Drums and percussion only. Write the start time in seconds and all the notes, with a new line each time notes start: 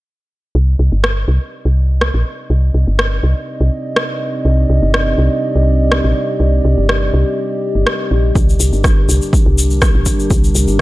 1.04 cross-stick
2.01 cross-stick
2.99 cross-stick
3.96 cross-stick
4.94 cross-stick
5.92 cross-stick
6.89 cross-stick
7.87 cross-stick
8.35 kick, shaker
8.49 shaker
8.60 shaker
8.73 shaker
8.84 kick, cross-stick, shaker
9.09 shaker
9.22 shaker
9.33 kick, shaker
9.58 shaker
9.70 shaker
9.82 kick, cross-stick, shaker
10.06 kick, shaker
10.20 shaker
10.30 kick, shaker
10.44 shaker
10.55 shaker
10.68 shaker